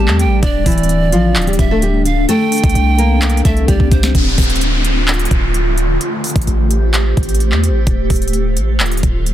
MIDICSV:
0, 0, Header, 1, 7, 480
1, 0, Start_track
1, 0, Key_signature, -1, "minor"
1, 0, Tempo, 465116
1, 441, Time_signature, 4, 2, 24, 8
1, 9637, End_track
2, 0, Start_track
2, 0, Title_t, "Pan flute"
2, 0, Program_c, 0, 75
2, 0, Note_on_c, 0, 81, 86
2, 171, Note_off_c, 0, 81, 0
2, 200, Note_on_c, 0, 79, 93
2, 428, Note_off_c, 0, 79, 0
2, 442, Note_on_c, 0, 74, 119
2, 1600, Note_off_c, 0, 74, 0
2, 1640, Note_on_c, 0, 76, 80
2, 2092, Note_off_c, 0, 76, 0
2, 2120, Note_on_c, 0, 77, 87
2, 2348, Note_off_c, 0, 77, 0
2, 2359, Note_on_c, 0, 79, 127
2, 3519, Note_off_c, 0, 79, 0
2, 3561, Note_on_c, 0, 76, 88
2, 3789, Note_off_c, 0, 76, 0
2, 3800, Note_on_c, 0, 74, 84
2, 4028, Note_off_c, 0, 74, 0
2, 4040, Note_on_c, 0, 72, 80
2, 4268, Note_off_c, 0, 72, 0
2, 9637, End_track
3, 0, Start_track
3, 0, Title_t, "Nylon-string guitar"
3, 0, Program_c, 1, 24
3, 0, Note_on_c, 1, 55, 63
3, 0, Note_on_c, 1, 67, 80
3, 414, Note_off_c, 1, 67, 0
3, 418, Note_off_c, 1, 55, 0
3, 441, Note_on_c, 1, 62, 101
3, 449, Note_on_c, 1, 74, 69
3, 665, Note_off_c, 1, 62, 0
3, 670, Note_off_c, 1, 74, 0
3, 684, Note_on_c, 1, 64, 74
3, 692, Note_on_c, 1, 52, 60
3, 1134, Note_off_c, 1, 64, 0
3, 1138, Note_off_c, 1, 52, 0
3, 1159, Note_on_c, 1, 65, 82
3, 1166, Note_on_c, 1, 53, 59
3, 1498, Note_off_c, 1, 65, 0
3, 1502, Note_off_c, 1, 53, 0
3, 1517, Note_on_c, 1, 67, 77
3, 1525, Note_on_c, 1, 55, 58
3, 1743, Note_off_c, 1, 67, 0
3, 1747, Note_off_c, 1, 55, 0
3, 1766, Note_on_c, 1, 69, 96
3, 1775, Note_on_c, 1, 57, 67
3, 1876, Note_off_c, 1, 69, 0
3, 1880, Note_off_c, 1, 57, 0
3, 1883, Note_on_c, 1, 67, 90
3, 1892, Note_on_c, 1, 55, 75
3, 2106, Note_off_c, 1, 67, 0
3, 2111, Note_off_c, 1, 55, 0
3, 2359, Note_on_c, 1, 69, 103
3, 2367, Note_on_c, 1, 57, 83
3, 3039, Note_off_c, 1, 69, 0
3, 3043, Note_off_c, 1, 57, 0
3, 3079, Note_on_c, 1, 70, 74
3, 3087, Note_on_c, 1, 58, 60
3, 3531, Note_off_c, 1, 70, 0
3, 3535, Note_off_c, 1, 58, 0
3, 3559, Note_on_c, 1, 69, 90
3, 3567, Note_on_c, 1, 57, 72
3, 3784, Note_off_c, 1, 69, 0
3, 3788, Note_off_c, 1, 57, 0
3, 3798, Note_on_c, 1, 67, 81
3, 3806, Note_on_c, 1, 55, 59
3, 4251, Note_off_c, 1, 67, 0
3, 4255, Note_off_c, 1, 55, 0
3, 9637, End_track
4, 0, Start_track
4, 0, Title_t, "Ambient pad"
4, 0, Program_c, 2, 92
4, 0, Note_on_c, 2, 55, 85
4, 0, Note_on_c, 2, 60, 95
4, 421, Note_off_c, 2, 55, 0
4, 421, Note_off_c, 2, 60, 0
4, 441, Note_on_c, 2, 50, 86
4, 441, Note_on_c, 2, 62, 94
4, 2342, Note_off_c, 2, 50, 0
4, 2342, Note_off_c, 2, 62, 0
4, 2360, Note_on_c, 2, 52, 88
4, 2360, Note_on_c, 2, 62, 97
4, 2361, Note_on_c, 2, 60, 79
4, 4262, Note_off_c, 2, 52, 0
4, 4262, Note_off_c, 2, 60, 0
4, 4262, Note_off_c, 2, 62, 0
4, 4281, Note_on_c, 2, 50, 84
4, 4282, Note_on_c, 2, 57, 76
4, 4282, Note_on_c, 2, 65, 92
4, 6182, Note_off_c, 2, 50, 0
4, 6182, Note_off_c, 2, 65, 0
4, 6201, Note_on_c, 2, 67, 74
4, 6201, Note_on_c, 2, 72, 94
4, 8102, Note_off_c, 2, 67, 0
4, 8102, Note_off_c, 2, 72, 0
4, 8121, Note_on_c, 2, 50, 83
4, 8121, Note_on_c, 2, 65, 93
4, 9637, Note_off_c, 2, 50, 0
4, 9637, Note_off_c, 2, 57, 0
4, 9637, Note_off_c, 2, 65, 0
4, 9637, End_track
5, 0, Start_track
5, 0, Title_t, "808-style bass"
5, 0, Program_c, 3, 38
5, 80, Note_on_c, 3, 40, 103
5, 261, Note_on_c, 3, 33, 104
5, 276, Note_off_c, 3, 40, 0
5, 432, Note_off_c, 3, 33, 0
5, 441, Note_on_c, 3, 26, 111
5, 671, Note_off_c, 3, 26, 0
5, 681, Note_on_c, 3, 26, 108
5, 1161, Note_on_c, 3, 33, 97
5, 1176, Note_off_c, 3, 26, 0
5, 1401, Note_on_c, 3, 26, 101
5, 1416, Note_off_c, 3, 33, 0
5, 1629, Note_off_c, 3, 26, 0
5, 1641, Note_on_c, 3, 26, 106
5, 2332, Note_off_c, 3, 26, 0
5, 2720, Note_on_c, 3, 36, 105
5, 2836, Note_off_c, 3, 36, 0
5, 2841, Note_on_c, 3, 36, 107
5, 3532, Note_off_c, 3, 36, 0
5, 3561, Note_on_c, 3, 36, 108
5, 3791, Note_off_c, 3, 36, 0
5, 3801, Note_on_c, 3, 36, 110
5, 3916, Note_off_c, 3, 36, 0
5, 3920, Note_on_c, 3, 36, 102
5, 4036, Note_off_c, 3, 36, 0
5, 4041, Note_on_c, 3, 36, 105
5, 4271, Note_off_c, 3, 36, 0
5, 4281, Note_on_c, 3, 26, 111
5, 4511, Note_off_c, 3, 26, 0
5, 4521, Note_on_c, 3, 26, 101
5, 5442, Note_off_c, 3, 26, 0
5, 5481, Note_on_c, 3, 26, 104
5, 6172, Note_off_c, 3, 26, 0
5, 6560, Note_on_c, 3, 33, 100
5, 6676, Note_off_c, 3, 33, 0
5, 6680, Note_on_c, 3, 33, 107
5, 7372, Note_off_c, 3, 33, 0
5, 7401, Note_on_c, 3, 33, 109
5, 7760, Note_on_c, 3, 40, 100
5, 7776, Note_off_c, 3, 33, 0
5, 7940, Note_on_c, 3, 33, 102
5, 7956, Note_off_c, 3, 40, 0
5, 8112, Note_off_c, 3, 33, 0
5, 8120, Note_on_c, 3, 26, 110
5, 8351, Note_off_c, 3, 26, 0
5, 8360, Note_on_c, 3, 26, 106
5, 8841, Note_on_c, 3, 33, 96
5, 8856, Note_off_c, 3, 26, 0
5, 9081, Note_on_c, 3, 26, 97
5, 9096, Note_off_c, 3, 33, 0
5, 9309, Note_off_c, 3, 26, 0
5, 9321, Note_on_c, 3, 26, 106
5, 9637, Note_off_c, 3, 26, 0
5, 9637, End_track
6, 0, Start_track
6, 0, Title_t, "Downlifter"
6, 0, Program_c, 4, 103
6, 4281, Note_on_c, 4, 60, 86
6, 8121, Note_off_c, 4, 60, 0
6, 9637, End_track
7, 0, Start_track
7, 0, Title_t, "Drums"
7, 81, Note_on_c, 9, 39, 67
7, 184, Note_off_c, 9, 39, 0
7, 201, Note_on_c, 9, 42, 74
7, 304, Note_off_c, 9, 42, 0
7, 441, Note_on_c, 9, 36, 127
7, 441, Note_on_c, 9, 42, 84
7, 544, Note_off_c, 9, 36, 0
7, 544, Note_off_c, 9, 42, 0
7, 681, Note_on_c, 9, 36, 93
7, 681, Note_on_c, 9, 42, 68
7, 681, Note_on_c, 9, 46, 88
7, 741, Note_off_c, 9, 42, 0
7, 741, Note_on_c, 9, 42, 69
7, 784, Note_off_c, 9, 36, 0
7, 784, Note_off_c, 9, 46, 0
7, 801, Note_off_c, 9, 42, 0
7, 801, Note_on_c, 9, 42, 69
7, 861, Note_off_c, 9, 42, 0
7, 861, Note_on_c, 9, 42, 68
7, 921, Note_off_c, 9, 42, 0
7, 921, Note_on_c, 9, 42, 82
7, 1024, Note_off_c, 9, 42, 0
7, 1161, Note_on_c, 9, 42, 80
7, 1264, Note_off_c, 9, 42, 0
7, 1401, Note_on_c, 9, 39, 123
7, 1401, Note_on_c, 9, 42, 45
7, 1461, Note_off_c, 9, 42, 0
7, 1461, Note_on_c, 9, 42, 57
7, 1504, Note_off_c, 9, 39, 0
7, 1520, Note_off_c, 9, 42, 0
7, 1520, Note_on_c, 9, 42, 64
7, 1580, Note_off_c, 9, 42, 0
7, 1580, Note_on_c, 9, 42, 73
7, 1640, Note_off_c, 9, 42, 0
7, 1640, Note_on_c, 9, 42, 78
7, 1641, Note_on_c, 9, 36, 90
7, 1743, Note_off_c, 9, 42, 0
7, 1744, Note_off_c, 9, 36, 0
7, 1880, Note_on_c, 9, 42, 69
7, 1984, Note_off_c, 9, 42, 0
7, 2120, Note_on_c, 9, 42, 68
7, 2224, Note_off_c, 9, 42, 0
7, 2360, Note_on_c, 9, 42, 88
7, 2464, Note_off_c, 9, 42, 0
7, 2601, Note_on_c, 9, 42, 50
7, 2601, Note_on_c, 9, 46, 89
7, 2660, Note_off_c, 9, 42, 0
7, 2660, Note_on_c, 9, 42, 62
7, 2704, Note_off_c, 9, 46, 0
7, 2720, Note_off_c, 9, 42, 0
7, 2720, Note_on_c, 9, 36, 103
7, 2720, Note_on_c, 9, 42, 71
7, 2781, Note_off_c, 9, 42, 0
7, 2781, Note_on_c, 9, 42, 80
7, 2823, Note_off_c, 9, 36, 0
7, 2841, Note_off_c, 9, 42, 0
7, 2841, Note_on_c, 9, 42, 84
7, 2944, Note_off_c, 9, 42, 0
7, 3081, Note_on_c, 9, 42, 86
7, 3184, Note_off_c, 9, 42, 0
7, 3321, Note_on_c, 9, 39, 124
7, 3321, Note_on_c, 9, 42, 62
7, 3401, Note_off_c, 9, 42, 0
7, 3401, Note_on_c, 9, 42, 61
7, 3425, Note_off_c, 9, 39, 0
7, 3481, Note_off_c, 9, 42, 0
7, 3481, Note_on_c, 9, 42, 60
7, 3560, Note_off_c, 9, 42, 0
7, 3560, Note_on_c, 9, 42, 77
7, 3561, Note_on_c, 9, 36, 91
7, 3664, Note_off_c, 9, 36, 0
7, 3664, Note_off_c, 9, 42, 0
7, 3681, Note_on_c, 9, 42, 47
7, 3784, Note_off_c, 9, 42, 0
7, 3800, Note_on_c, 9, 42, 68
7, 3801, Note_on_c, 9, 36, 66
7, 3903, Note_off_c, 9, 42, 0
7, 3904, Note_off_c, 9, 36, 0
7, 3921, Note_on_c, 9, 36, 67
7, 4024, Note_off_c, 9, 36, 0
7, 4040, Note_on_c, 9, 42, 77
7, 4041, Note_on_c, 9, 36, 98
7, 4144, Note_off_c, 9, 36, 0
7, 4144, Note_off_c, 9, 42, 0
7, 4160, Note_on_c, 9, 38, 101
7, 4264, Note_off_c, 9, 38, 0
7, 4281, Note_on_c, 9, 36, 119
7, 4281, Note_on_c, 9, 42, 84
7, 4384, Note_off_c, 9, 36, 0
7, 4384, Note_off_c, 9, 42, 0
7, 4520, Note_on_c, 9, 42, 67
7, 4520, Note_on_c, 9, 46, 83
7, 4521, Note_on_c, 9, 36, 93
7, 4581, Note_off_c, 9, 42, 0
7, 4581, Note_on_c, 9, 42, 65
7, 4624, Note_off_c, 9, 36, 0
7, 4624, Note_off_c, 9, 46, 0
7, 4641, Note_off_c, 9, 42, 0
7, 4641, Note_on_c, 9, 42, 64
7, 4701, Note_off_c, 9, 42, 0
7, 4701, Note_on_c, 9, 42, 63
7, 4761, Note_off_c, 9, 42, 0
7, 4761, Note_on_c, 9, 42, 80
7, 4864, Note_off_c, 9, 42, 0
7, 5001, Note_on_c, 9, 42, 81
7, 5104, Note_off_c, 9, 42, 0
7, 5240, Note_on_c, 9, 42, 42
7, 5241, Note_on_c, 9, 39, 120
7, 5301, Note_off_c, 9, 42, 0
7, 5301, Note_on_c, 9, 42, 54
7, 5344, Note_off_c, 9, 39, 0
7, 5361, Note_off_c, 9, 42, 0
7, 5361, Note_on_c, 9, 42, 64
7, 5421, Note_off_c, 9, 42, 0
7, 5421, Note_on_c, 9, 42, 70
7, 5480, Note_off_c, 9, 42, 0
7, 5480, Note_on_c, 9, 42, 77
7, 5481, Note_on_c, 9, 36, 87
7, 5584, Note_off_c, 9, 36, 0
7, 5584, Note_off_c, 9, 42, 0
7, 5720, Note_on_c, 9, 42, 69
7, 5824, Note_off_c, 9, 42, 0
7, 5960, Note_on_c, 9, 42, 67
7, 6064, Note_off_c, 9, 42, 0
7, 6201, Note_on_c, 9, 42, 80
7, 6304, Note_off_c, 9, 42, 0
7, 6440, Note_on_c, 9, 42, 48
7, 6440, Note_on_c, 9, 46, 82
7, 6500, Note_off_c, 9, 42, 0
7, 6500, Note_on_c, 9, 42, 62
7, 6544, Note_off_c, 9, 46, 0
7, 6560, Note_off_c, 9, 42, 0
7, 6560, Note_on_c, 9, 36, 97
7, 6560, Note_on_c, 9, 42, 69
7, 6620, Note_off_c, 9, 42, 0
7, 6620, Note_on_c, 9, 42, 77
7, 6663, Note_off_c, 9, 36, 0
7, 6681, Note_off_c, 9, 42, 0
7, 6681, Note_on_c, 9, 42, 82
7, 6784, Note_off_c, 9, 42, 0
7, 6920, Note_on_c, 9, 42, 78
7, 7024, Note_off_c, 9, 42, 0
7, 7160, Note_on_c, 9, 42, 70
7, 7161, Note_on_c, 9, 39, 115
7, 7264, Note_off_c, 9, 39, 0
7, 7264, Note_off_c, 9, 42, 0
7, 7400, Note_on_c, 9, 42, 47
7, 7401, Note_on_c, 9, 36, 87
7, 7460, Note_off_c, 9, 42, 0
7, 7460, Note_on_c, 9, 42, 56
7, 7504, Note_off_c, 9, 36, 0
7, 7520, Note_off_c, 9, 42, 0
7, 7520, Note_on_c, 9, 42, 70
7, 7580, Note_off_c, 9, 42, 0
7, 7580, Note_on_c, 9, 42, 78
7, 7640, Note_off_c, 9, 42, 0
7, 7640, Note_on_c, 9, 42, 68
7, 7743, Note_off_c, 9, 42, 0
7, 7760, Note_on_c, 9, 39, 65
7, 7863, Note_off_c, 9, 39, 0
7, 7880, Note_on_c, 9, 42, 74
7, 7983, Note_off_c, 9, 42, 0
7, 8120, Note_on_c, 9, 36, 123
7, 8120, Note_on_c, 9, 42, 83
7, 8223, Note_off_c, 9, 36, 0
7, 8223, Note_off_c, 9, 42, 0
7, 8360, Note_on_c, 9, 42, 68
7, 8360, Note_on_c, 9, 46, 82
7, 8361, Note_on_c, 9, 36, 93
7, 8420, Note_off_c, 9, 42, 0
7, 8420, Note_on_c, 9, 42, 68
7, 8463, Note_off_c, 9, 46, 0
7, 8464, Note_off_c, 9, 36, 0
7, 8480, Note_off_c, 9, 42, 0
7, 8480, Note_on_c, 9, 42, 64
7, 8541, Note_off_c, 9, 42, 0
7, 8541, Note_on_c, 9, 42, 68
7, 8600, Note_off_c, 9, 42, 0
7, 8600, Note_on_c, 9, 42, 81
7, 8704, Note_off_c, 9, 42, 0
7, 8841, Note_on_c, 9, 42, 81
7, 8944, Note_off_c, 9, 42, 0
7, 9081, Note_on_c, 9, 39, 122
7, 9081, Note_on_c, 9, 42, 44
7, 9141, Note_off_c, 9, 42, 0
7, 9141, Note_on_c, 9, 42, 53
7, 9184, Note_off_c, 9, 39, 0
7, 9201, Note_off_c, 9, 42, 0
7, 9201, Note_on_c, 9, 42, 64
7, 9261, Note_off_c, 9, 42, 0
7, 9261, Note_on_c, 9, 42, 73
7, 9321, Note_off_c, 9, 42, 0
7, 9321, Note_on_c, 9, 36, 87
7, 9321, Note_on_c, 9, 42, 75
7, 9424, Note_off_c, 9, 36, 0
7, 9424, Note_off_c, 9, 42, 0
7, 9561, Note_on_c, 9, 42, 68
7, 9637, Note_off_c, 9, 42, 0
7, 9637, End_track
0, 0, End_of_file